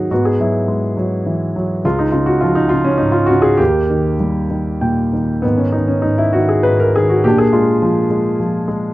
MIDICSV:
0, 0, Header, 1, 2, 480
1, 0, Start_track
1, 0, Tempo, 580833
1, 93, Time_signature, 3, 2, 24, 8
1, 2972, Tempo, 611621
1, 5372, Tempo, 576923
1, 7270, End_track
2, 0, Start_track
2, 0, Title_t, "Grand piano"
2, 0, Program_c, 0, 0
2, 0, Control_c, 0, 64, 127
2, 0, Note_on_c, 0, 44, 38
2, 0, Note_on_c, 0, 51, 34
2, 0, Note_on_c, 0, 54, 33
2, 0, Note_on_c, 0, 61, 47
2, 0, Note_on_c, 0, 63, 54
2, 0, Note_on_c, 0, 66, 59
2, 0, Note_on_c, 0, 68, 55
2, 85, Note_off_c, 0, 54, 0
2, 91, Note_off_c, 0, 44, 0
2, 91, Note_on_c, 0, 44, 47
2, 93, Note_off_c, 0, 66, 0
2, 93, Note_on_c, 0, 66, 59
2, 102, Control_c, 0, 64, 0
2, 104, Note_off_c, 0, 61, 0
2, 107, Note_on_c, 0, 59, 46
2, 108, Note_off_c, 0, 63, 0
2, 109, Note_off_c, 0, 51, 0
2, 110, Note_off_c, 0, 68, 0
2, 206, Note_off_c, 0, 66, 0
2, 209, Note_on_c, 0, 68, 57
2, 243, Control_c, 0, 64, 127
2, 329, Note_on_c, 0, 54, 36
2, 335, Note_off_c, 0, 68, 0
2, 336, Note_on_c, 0, 64, 56
2, 563, Note_on_c, 0, 56, 41
2, 775, Note_off_c, 0, 64, 0
2, 781, Note_off_c, 0, 59, 0
2, 787, Note_off_c, 0, 54, 0
2, 800, Note_on_c, 0, 54, 41
2, 1043, Note_on_c, 0, 52, 41
2, 1276, Note_off_c, 0, 54, 0
2, 1289, Note_on_c, 0, 54, 39
2, 1491, Note_off_c, 0, 44, 0
2, 1493, Note_off_c, 0, 56, 0
2, 1509, Note_off_c, 0, 52, 0
2, 1519, Note_off_c, 0, 54, 0
2, 1528, Note_on_c, 0, 37, 52
2, 1530, Note_on_c, 0, 65, 67
2, 1532, Note_on_c, 0, 56, 49
2, 1537, Control_c, 0, 64, 0
2, 1643, Note_on_c, 0, 63, 65
2, 1650, Note_off_c, 0, 65, 0
2, 1681, Control_c, 0, 64, 127
2, 1753, Note_on_c, 0, 65, 59
2, 1755, Note_off_c, 0, 63, 0
2, 1762, Note_on_c, 0, 49, 44
2, 1868, Note_on_c, 0, 66, 69
2, 1870, Note_off_c, 0, 65, 0
2, 1990, Note_on_c, 0, 65, 68
2, 2002, Note_off_c, 0, 66, 0
2, 2011, Note_on_c, 0, 53, 46
2, 2110, Note_on_c, 0, 63, 73
2, 2111, Note_off_c, 0, 65, 0
2, 2220, Note_off_c, 0, 56, 0
2, 2224, Note_on_c, 0, 65, 74
2, 2242, Note_off_c, 0, 49, 0
2, 2244, Note_off_c, 0, 63, 0
2, 2255, Note_on_c, 0, 49, 43
2, 2351, Note_on_c, 0, 61, 72
2, 2361, Note_off_c, 0, 65, 0
2, 2461, Note_on_c, 0, 63, 69
2, 2471, Note_off_c, 0, 61, 0
2, 2491, Note_on_c, 0, 44, 43
2, 2578, Note_on_c, 0, 65, 73
2, 2599, Note_off_c, 0, 63, 0
2, 2697, Note_on_c, 0, 66, 75
2, 2718, Note_off_c, 0, 65, 0
2, 2720, Note_off_c, 0, 49, 0
2, 2733, Note_on_c, 0, 49, 47
2, 2825, Note_off_c, 0, 66, 0
2, 2825, Note_on_c, 0, 68, 80
2, 2942, Note_off_c, 0, 37, 0
2, 2947, Note_off_c, 0, 53, 0
2, 2953, Note_on_c, 0, 67, 71
2, 2960, Note_off_c, 0, 44, 0
2, 2964, Note_off_c, 0, 68, 0
2, 2968, Note_off_c, 0, 49, 0
2, 2968, Note_on_c, 0, 58, 55
2, 2970, Note_on_c, 0, 39, 49
2, 2985, Control_c, 0, 64, 0
2, 3110, Control_c, 0, 64, 127
2, 3211, Note_on_c, 0, 51, 44
2, 3399, Note_off_c, 0, 67, 0
2, 3447, Note_on_c, 0, 55, 42
2, 3644, Note_off_c, 0, 58, 0
2, 3674, Note_off_c, 0, 51, 0
2, 3686, Note_on_c, 0, 51, 37
2, 3926, Note_on_c, 0, 46, 36
2, 3927, Note_on_c, 0, 79, 46
2, 4165, Note_off_c, 0, 51, 0
2, 4177, Note_on_c, 0, 51, 36
2, 4380, Note_off_c, 0, 39, 0
2, 4384, Note_off_c, 0, 79, 0
2, 4387, Note_off_c, 0, 55, 0
2, 4400, Note_off_c, 0, 46, 0
2, 4403, Note_on_c, 0, 59, 60
2, 4410, Note_off_c, 0, 51, 0
2, 4418, Note_on_c, 0, 44, 44
2, 4422, Note_on_c, 0, 51, 39
2, 4424, Control_c, 0, 64, 0
2, 4522, Note_on_c, 0, 61, 51
2, 4534, Note_off_c, 0, 59, 0
2, 4560, Control_c, 0, 64, 127
2, 4641, Note_on_c, 0, 63, 55
2, 4650, Note_off_c, 0, 51, 0
2, 4654, Note_off_c, 0, 61, 0
2, 4661, Note_on_c, 0, 51, 39
2, 4760, Note_off_c, 0, 63, 0
2, 4762, Note_on_c, 0, 61, 58
2, 4873, Note_on_c, 0, 63, 64
2, 4886, Note_off_c, 0, 44, 0
2, 4893, Note_off_c, 0, 61, 0
2, 4898, Note_on_c, 0, 44, 38
2, 5000, Note_on_c, 0, 64, 70
2, 5008, Note_off_c, 0, 63, 0
2, 5115, Note_on_c, 0, 66, 67
2, 5130, Note_off_c, 0, 51, 0
2, 5131, Note_off_c, 0, 64, 0
2, 5142, Note_on_c, 0, 51, 39
2, 5240, Note_on_c, 0, 68, 63
2, 5248, Note_off_c, 0, 66, 0
2, 5355, Note_on_c, 0, 71, 75
2, 5364, Note_off_c, 0, 44, 0
2, 5370, Note_off_c, 0, 68, 0
2, 5376, Note_on_c, 0, 44, 40
2, 5490, Note_on_c, 0, 70, 71
2, 5493, Note_off_c, 0, 71, 0
2, 5621, Note_off_c, 0, 51, 0
2, 5621, Note_off_c, 0, 70, 0
2, 5622, Note_on_c, 0, 68, 71
2, 5634, Note_on_c, 0, 51, 41
2, 5737, Note_on_c, 0, 66, 65
2, 5748, Note_off_c, 0, 68, 0
2, 5851, Note_off_c, 0, 44, 0
2, 5860, Note_on_c, 0, 67, 81
2, 5863, Note_off_c, 0, 51, 0
2, 5865, Note_off_c, 0, 66, 0
2, 5866, Note_on_c, 0, 46, 52
2, 5875, Control_c, 0, 64, 0
2, 5889, Note_on_c, 0, 62, 56
2, 5954, Note_off_c, 0, 67, 0
2, 5974, Note_on_c, 0, 70, 47
2, 5979, Note_on_c, 0, 68, 73
2, 5994, Note_off_c, 0, 70, 0
2, 6003, Control_c, 0, 64, 127
2, 6098, Note_on_c, 0, 65, 66
2, 6103, Note_off_c, 0, 68, 0
2, 6105, Note_on_c, 0, 56, 47
2, 6342, Note_on_c, 0, 53, 49
2, 6539, Note_off_c, 0, 65, 0
2, 6554, Note_off_c, 0, 62, 0
2, 6564, Note_off_c, 0, 56, 0
2, 6576, Note_on_c, 0, 56, 44
2, 6808, Note_off_c, 0, 53, 0
2, 6821, Note_on_c, 0, 53, 47
2, 7043, Note_off_c, 0, 56, 0
2, 7056, Note_on_c, 0, 56, 49
2, 7261, Note_off_c, 0, 46, 0
2, 7270, Note_off_c, 0, 53, 0
2, 7270, Note_off_c, 0, 56, 0
2, 7270, End_track
0, 0, End_of_file